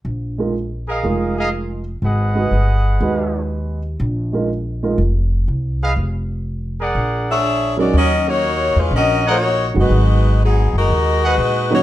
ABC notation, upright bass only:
X:1
M:4/4
L:1/8
Q:"Swing" 1/4=122
K:Bbphr
V:1 name="Upright bass" clef=bass
B,,,4 F,,,4 | A,,,2 =G,,,2 E,,4 | B,,,4 F,,,2 =C,,2 | F,,,4 B,,,4 |
E,,3 _F,, B,,,3 =G,,, | A,,,3 G,,, E,,2 B,,2 |]